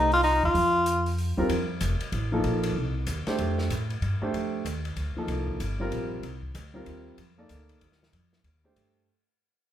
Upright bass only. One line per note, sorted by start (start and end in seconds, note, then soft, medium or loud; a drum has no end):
0.00 0.39 C2 medium
0.43 0.54 D#2 medium
0.54 1.33 F2 medium
1.38 1.49 D#2 medium
1.49 1.80 F2 medium
1.81 1.99 F1 medium
2.01 muted upright bass stroke soft
2.12 2.43 A1 medium
2.44 2.75 A#1 medium
2.76 3.06 C2 medium
3.07 3.25 D#2 medium
3.27 muted upright bass stroke soft
3.39 3.69 F2 medium
3.70 4.01 A2 medium
4.02 4.20 G2 medium
4.22 muted upright bass stroke soft
4.33 4.64 F2 medium
4.65 4.95 D#2 medium
4.96 5.15 D2 medium
5.16 muted upright bass stroke soft
5.27 5.58 C2 medium
5.60 5.90 G1 medium
5.91 6.22 A#1 medium
6.23 6.54 C2 medium
6.55 6.85 D2 medium
6.87 7.17 D#2 medium
7.18 7.48 F2 medium
7.50 7.80 D2 medium
7.81 8.12 D#2 medium
8.13 8.43 F2 medium
8.44 8.75 D#2 medium
8.76 9.06 G2 medium